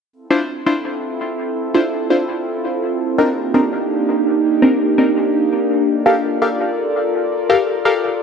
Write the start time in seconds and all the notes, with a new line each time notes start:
0.30 D4 E4 F4 C5
0.40 C4 E4 F4 A4
0.66 D4 E4 F4 C5
1.74 D4 E4 F4 C5
1.84 C4 E4 F4 A4
2.10 D4 E4 F4 C5
3.18 C4 D4 D#4 A#4
3.27 A#3 D4 D#4 G4
3.54 C4 D4 D#4 A#4
4.62 C4 D4 D#4 A#4
4.72 A#3 D4 D#4 G4
4.98 C4 D4 D#4 A#4
6.06 G4 A4 A#4 F5
6.15 F4 A4 A#4 D5
6.42 G4 A4 A#4 F5
7.50 G4 A4 A#4 F5
7.59 F4 A4 A#4 D5
7.85 G4 A4 A#4 F5